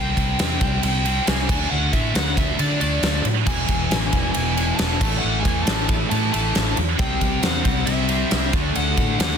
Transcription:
Already playing: C2 C3 G3 C4 G5
0.17 C2, kick, ride
0.39 E2, snare, ride
0.61 C2, kick, ride
0.83 C2 G5, ride
1.05 C3 G3 C4 G5, ride
1.26 C2 C3 G3 C4 G#5, snare, ride
1.48 D2 D3 A3 D4, kick, crash
1.70 D2 F#5
1.93 A2 E5, kick, ride
2.15 D2 F#5, snare, ride
2.37 E5, kick, ride
2.58 D3 A3 D4 D5, ride
2.80 D2 D3 A3 D4 D5, ride
3.03 D2, snare, ride
3.25 A2, ride
3.45 E1 E2 B2 E3 G#5, kick, crash
3.68 E1, kick, ride
3.90 A1, snare, ride
4.11 E1 E2 B2 E3, kick, ride
4.31 G#5, ride
4.36 E1
4.55 B2 E3 G#5, ride
4.59 E2
4.76 E1 E2 A5, snare, ride
4.80 B2 E3
5.00 A1 A2 E3 A3, kick, crash
5.18 F#5
5.24 A1
5.41 G#5
5.45 E2, kick, ride
5.63 A2 A5
5.67 A1 E3 A3, snare, ride
5.86 A5, kick, ride
6.10 A2 E3 A3 A5, ride
6.32 A1 A2 E3 A3 A5, ride
6.55 A1, snare, ride
6.77 E2, ride
6.98 C2 C3 G3 C4 G5, kick, ride
7.21 C2, kick, ride
7.43 E2 F#5, snare, ride
7.64 C2 C3 G3 C4, kick, ride
7.86 C2 E5, ride
8.09 C3 G3 C4, ride
8.30 C2 C3 G3 C4, snare, ride
8.52 D2 D3 A3 D4, kick, ride
8.75 D2 F#5, ride
8.97 A2, kick, ride
9.19 D#2 D3 A3 D4 F#5, snare, ride

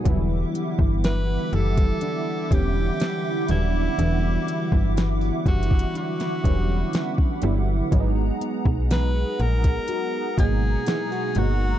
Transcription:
Already playing: B3 F#4 A#4 F#5
0.04 E1 D3 E3 F#3 G3 B3 E4 E5 D6, kick, closed hi-hat
0.54 G3, closed hi-hat
0.79 G1, kick
1.04 B4, snare, closed hi-hat
1.53 F#1 G3 A4, closed hi-hat
1.77 kick, closed hi-hat
2.01 D4, closed hi-hat
2.50 E1 D3 E3 G3 B3 C#4 G4, kick, closed hi-hat
3.00 D4, snare, closed hi-hat
3.48 D#1 D3 F#3 G3 B3 D4 E4, closed hi-hat
3.98 E1 D3 E3 G3 B3 E4 F#4, closed hi-hat
4.48 G3, closed hi-hat
4.72 G1, kick
4.97 E4, snare, closed hi-hat
5.21 F#4
5.46 F#1 G3 F#4, kick, closed hi-hat
5.63 closed hi-hat
5.71 kick
5.79 closed hi-hat
5.95 D4 F#4, closed hi-hat
6.20 snare, closed hi-hat
6.43 E1 D3 F#3 G3 B3 C#4, kick, closed hi-hat
6.93 D4, snare, closed hi-hat
7.18 kick
7.42 G1 D3 F#3 G3 B3 E4, closed hi-hat
7.91 G#1 F#3 G#3 B3 C#4 G#4 A#5, kick, closed hi-hat
8.00 D#4
8.41 B3, closed hi-hat
8.65 B1, kick
8.91 B4, snare, closed hi-hat
9.39 A#1 B3 A#4, closed hi-hat
9.64 kick, closed hi-hat
9.88 F#4, closed hi-hat
10.37 G#1 B2 F#3 G#3 A#3 B3 D#4 G#4, kick, closed hi-hat
10.86 E4, snare, closed hi-hat
11.12 F#4
11.35 G1 B2 F#3 G#3 A#3 B3 D#4 F#4, closed hi-hat

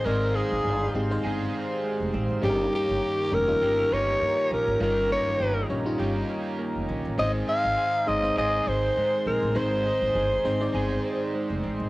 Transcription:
Already playing: G#3 C4 D#4 G#4 C5 D#5 C6
0.05 G#1 G#2 D#3 G#3 C4 D#4 G#4 A#4 D5 F5
0.34 G#3 D#4 G#4
0.52 G#1
0.65 G1 G#4
0.94 G#1 G#3 C4 D#4 G4
1.10 G#3 C4 D#4 C5
1.23 G1 G#3 D#4 G#4
1.28 G#4
1.54 C4
1.84 G#3
2.00 F1
2.14 A1 C4
2.30 G#1
2.42 G1 G2 D#3 G3 A#3 C#4 D#4 G4 G#4 C#5 A#5
2.50 A#4
2.73 A#3 G4
2.89 G1
3.03 G4
3.31 F1 G3 C#4 D#4 A#4
3.47 G3 C#4 D#4 F4
3.62 G1 D#3 A#3 D#4 G4
3.91 G1 A#3 C#4 D#4 C#5
4.21 G2 A#3
4.51 A#1 C#4 A#4
4.68 G#1
4.80 G1 G2 D#3 G3 A#3 C#4 D#4 F4 A#4
5.10 A#3 D#4 C#5
5.27 G1
5.40 G1 G4
5.69 A#1 G3 C#4 D#4 C#5
5.85 G3 C#4 D#4 F4
5.98 G1 D#3 A#3 D#4 G4
6.29 C#4
6.59 A#3
6.75 F1
6.88 A#1 C#4
7.05 A1
7.18 G#1 G#2 D#3 G#3 C4 D#4 G#4 C5 D#5 C6
7.47 G#3 D#4 G#4 F5
7.65 G#1
7.78 G#4
8.06 G1 G#3 C4 D#4 C5 D#5
8.23 G#3 C4 D#4 C5
8.36 G#1 G#3 D#4 G#4 D#5
8.40 G#4
8.67 G#1 C4 C5
8.97 G#2 G#3
9.26 A#1 C4 A#4
9.42 A1
9.55 G#1 G#2 D#3 G#3 C4 D#4 G#4 C5
9.84 G#3 D#4 G#4
10.02 G#1
10.15 G1 G#4
10.44 G#1 G#3 C4 D#4 C5
10.60 G#3 C4 D#4 D5
10.73 G1 G#3 D#4 G#4
10.78 G#4
11.05 C4
11.35 G#3
11.50 F1
11.63 A1 C4
11.80 G#1

